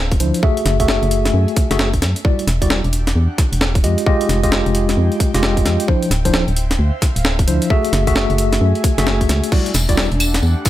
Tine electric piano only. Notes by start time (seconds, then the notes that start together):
0.20 F3 D4 E4 C5
0.43 A3 F#4 G#4 E5
0.80 A3 F#4 G#4 E5
1.71 A3 F#4 G#4 E5
2.25 G3 E4 F#4 D5
2.62 G3 E4 F#4 D5
3.84 G#3 F4 G4 D#5
4.06 G#3 F4 G4 D#5
4.43 G#3 F4 G4 D#5
5.34 G#3 F4 G4 D#5
5.88 F3 D4 E4 C5
6.25 F3 D4 E4 C5
7.48 F3 D4 E4 C5
7.70 A3 F#4 G#4 E5
8.07 A3 F#4 G#4 E5
8.98 A3 F#4 G#4 E5
9.52 G3 E4 F#4 D5
9.89 G3 E4 F#4 D5